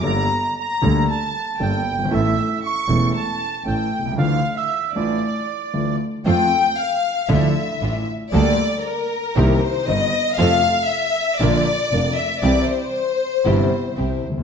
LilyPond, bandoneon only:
\new Staff \with { instrumentName = "Bandoneon" } { \time 4/4 \key d \minor \tempo 4 = 116 bes''4 bes''4 a''4 g''4 | e''4 cis'''4 a''4 g''4 | f''8. e''8. d''2 r8 | \key f \major r1 |
r1 | r1 | r1 | }